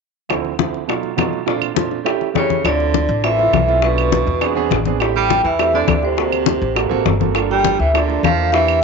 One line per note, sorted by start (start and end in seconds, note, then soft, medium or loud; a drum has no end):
0.29 0.50 D2 medium
0.29 0.50 F3 medium
0.29 0.51 A3 medium
0.29 0.51 C4 medium
0.29 0.51 E4 medium
0.29 high bongo medium
0.29 high conga soft
0.29 claves medium
0.45 high conga soft
0.58 0.79 D2 medium
0.58 0.80 F3 medium
0.58 0.80 A3 medium
0.58 0.80 C4 medium
0.58 0.80 E4 medium
0.58 high bongo soft
0.58 high conga medium
0.74 high conga soft
0.87 1.09 B2 medium
0.87 1.09 F#3 medium
0.87 1.09 A3 medium
0.87 1.09 D#4 medium
0.87 1.09 F4 medium
0.87 high bongo medium
0.87 high conga soft
0.87 claves medium
1.03 high conga soft
1.16 1.38 B2 medium
1.16 1.38 F#3 medium
1.16 1.38 A3 medium
1.16 1.38 D#4 medium
1.16 1.39 F4 medium
1.16 high bongo medium
1.16 low bongo medium
1.16 high conga medium
1.16 claves medium
1.33 high conga soft
1.46 1.67 A#2 medium
1.46 1.67 A3 medium
1.46 1.67 C4 medium
1.46 1.68 D4 medium
1.46 1.68 F4 medium
1.46 high bongo medium
1.46 high conga soft
1.62 high conga soft
1.62 claves medium
1.75 1.96 A#2 medium
1.75 1.96 A3 medium
1.75 1.96 C4 medium
1.75 1.97 D4 medium
1.75 1.97 F4 medium
1.75 high bongo medium
1.75 high conga medium
1.91 high bongo soft
1.91 high conga soft
2.04 2.26 A3 medium
2.04 2.26 C#4 medium
2.04 2.26 E4 medium
2.04 2.27 G4 medium
2.04 high bongo medium
2.04 high conga soft
2.04 claves soft
2.21 high bongo soft
2.21 high conga soft
2.34 2.63 C#3 medium
2.34 2.55 A3 medium
2.34 2.56 C#4 medium
2.34 2.56 E4 medium
2.34 2.56 G4 medium
2.34 2.67 C#5 medium
2.34 high bongo medium
2.34 low bongo medium
2.34 high conga medium
2.50 high bongo soft
2.50 high conga medium
2.63 3.06 D2 medium
2.63 3.20 D3 medium
2.63 3.05 A3 medium
2.63 3.05 C4 medium
2.63 3.06 E4 medium
2.63 3.06 F4 medium
2.63 3.26 D5 loud
2.63 high bongo medium
2.63 high conga soft
2.63 claves medium
2.80 high conga soft
2.94 high bongo medium
2.94 high conga medium
3.09 3.50 A1 medium
3.09 high conga soft
3.24 3.79 E3 medium
3.24 3.34 A3 medium
3.24 3.34 C4 medium
3.24 3.35 E4 medium
3.24 3.34 F4 medium
3.24 3.85 E5 medium
3.24 high bongo medium
3.24 high conga soft
3.24 claves medium
3.38 3.59 A3 medium
3.38 3.59 C4 medium
3.38 3.59 E4 medium
3.38 3.60 F4 medium
3.38 high conga soft
3.53 4.21 B1 medium
3.53 high bongo medium
3.53 low bongo medium
3.53 high conga medium
3.53 claves medium
3.67 3.78 A3 medium
3.67 3.78 C4 medium
3.67 3.78 E4 medium
3.67 3.78 F4 medium
3.67 high conga soft
3.82 4.67 B2 medium
3.82 4.24 A3 medium
3.82 4.24 C#4 medium
3.82 4.24 D4 medium
3.82 4.24 F4 medium
3.82 4.67 B4 medium
3.82 high bongo medium
3.82 high conga soft
3.98 high conga soft
3.98 claves medium
4.12 high bongo medium
4.12 high conga medium
4.27 4.68 E2 medium
4.27 high bongo soft
4.27 high conga soft
4.41 4.52 B3 medium
4.41 4.52 C4 medium
4.41 4.52 D4 medium
4.41 4.52 G#4 medium
4.41 high bongo medium
4.41 high conga soft
4.41 claves medium
4.55 4.76 B3 medium
4.55 4.77 C4 medium
4.55 4.77 D4 medium
4.55 4.77 G#4 loud
4.55 high bongo soft
4.55 high conga soft
4.71 5.39 A1 medium
4.71 high bongo medium
4.71 low bongo medium
4.71 high conga medium
4.86 4.96 B3 medium
4.86 4.96 C4 medium
4.86 4.96 D4 medium
4.86 4.97 G#4 medium
4.86 high bongo soft
4.86 high conga medium
5.00 5.41 A3 medium
5.00 5.41 C4 medium
5.00 5.41 E4 medium
5.00 5.42 G4 medium
5.00 high bongo medium
5.00 high conga soft
5.00 claves medium
5.16 5.43 G3 medium
5.16 5.46 G5 medium
5.16 high conga soft
5.30 high bongo medium
5.30 high conga medium
5.44 5.85 E2 medium
5.44 5.71 E3 medium
5.44 5.76 E5 medium
5.44 high conga soft
5.59 5.70 A3 medium
5.59 5.69 C4 medium
5.59 5.70 E4 medium
5.59 5.70 G4 medium
5.59 high bongo medium
5.59 high conga soft
5.59 claves medium
5.73 6.01 D3 medium
5.73 5.94 A3 medium
5.73 5.95 C4 medium
5.73 5.95 E4 medium
5.73 5.95 A4 medium
5.73 6.05 D5 medium
5.73 high conga soft
5.88 6.56 D2 medium
5.88 high bongo medium
5.88 low bongo medium
5.88 high conga medium
5.88 claves medium
6.03 7.17 C3 medium
6.03 6.13 A3 medium
6.03 6.13 C4 medium
6.03 6.13 E4 medium
6.03 6.13 G4 medium
6.03 7.17 C5 medium
6.03 high conga soft
6.17 6.58 A#3 medium
6.17 6.59 C4 medium
6.17 6.59 F#4 medium
6.17 6.59 A4 medium
6.17 high bongo medium
6.17 high conga soft
6.32 high conga soft
6.32 claves medium
6.46 high bongo medium
6.46 high conga loud
6.62 6.89 A1 medium
6.62 high bongo soft
6.62 high conga soft
6.75 6.86 A#3 medium
6.75 6.87 C4 medium
6.75 6.87 F#4 medium
6.75 6.87 A4 medium
6.75 high bongo medium
6.75 high conga soft
6.75 claves medium
6.89 7.05 A1 medium
6.89 7.11 A#3 medium
6.89 7.11 C4 medium
6.89 7.12 F#4 medium
6.89 7.12 A4 loud
6.89 high bongo soft
6.89 high conga soft
7.05 7.74 G1 medium
7.05 high bongo medium
7.05 low bongo medium
7.05 high conga medium
7.20 7.31 A#3 medium
7.20 7.31 C4 medium
7.20 7.31 F#4 medium
7.20 7.31 A4 medium
7.20 high bongo soft
7.20 high conga medium
7.34 7.76 A#3 medium
7.34 7.76 D4 medium
7.34 7.76 F4 medium
7.34 7.76 A4 medium
7.34 high bongo medium
7.34 high conga soft
7.34 claves medium
7.51 7.78 G3 medium
7.51 7.78 G5 medium
7.51 high conga soft
7.64 high bongo medium
7.64 high conga loud
7.79 8.20 D2 medium
7.79 7.94 E3 medium
7.79 7.93 E5 medium
7.79 high conga soft
7.93 8.22 D3 medium
7.93 8.04 A#3 medium
7.93 8.04 D4 medium
7.93 8.04 F4 medium
7.93 8.05 A4 medium
7.93 8.25 D5 medium
7.93 high bongo medium
7.93 high conga soft
7.93 claves medium
8.08 8.29 A#3 medium
8.08 8.29 D4 medium
8.08 8.29 F4 medium
8.08 8.29 A4 medium
8.08 high conga soft
8.23 8.84 E2 medium
8.23 8.51 F3 medium
8.23 8.54 F5 medium
8.23 high bongo medium
8.23 low bongo medium
8.23 high conga medium
8.23 claves medium
8.37 8.48 A#3 medium
8.37 8.48 D4 medium
8.37 8.49 F4 medium
8.37 8.49 A4 medium
8.37 high conga soft
8.52 8.80 E3 medium
8.52 8.84 A#3 medium
8.52 8.84 D4 medium
8.52 8.84 E4 medium
8.52 8.84 G4 medium
8.52 8.83 E5 loud
8.52 high bongo medium
8.52 high conga soft
8.68 high conga soft
8.68 claves medium